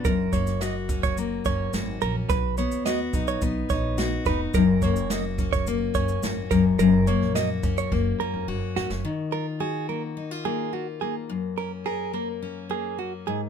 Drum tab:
SH |x-xxx-xxx-x-x-x-|x-xxx-xxx-x-x-x-|x-xxx-xxx-xxx-x-|x-x-x-xx--------|
SD |---oo-------o---|----o-------o---|----o-------o---|---oo---------oo|
BD |o-o---oo--o-----|o-----o-o-o---o-|o-o---oo--o---o-|------o-o-------|

SH |----------------|----------------|
SD |----------------|----------------|
BD |----------------|----------------|